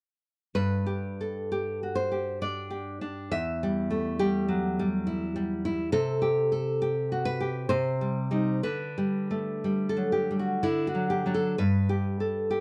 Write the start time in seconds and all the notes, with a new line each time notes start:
0.55 G2 B4
0.86 G4
1.21 A4
1.52 G4
1.83 F#4
1.95 C5
2.12 G4
2.42 D4 D5
2.70 G4
3.01 D4
3.31 E2 E5
3.63 G3
3.90 A3
4.19 G3 G4
4.48 F#3
4.79 G3
5.07 E4
5.36 G3
5.65 E4
5.92 C3 A4
6.22 G4
6.52 A4
6.82 G4
7.12 F#4
7.25 B4
7.40 G4
7.69 C3 C5
8.01 G3
8.31 G3 D#4
8.63 D3 B4
8.98 G3
9.31 A3
9.64 G3
9.89 A4
9.97 F#3
10.12 G4
10.31 G3
10.39 F#4
10.63 D3 E4
10.87 F#4
10.95 F#3
11.10 G4
11.26 F#3 D4
11.34 A4
11.58 G2 B4
11.89 G4
12.20 A4
12.51 G4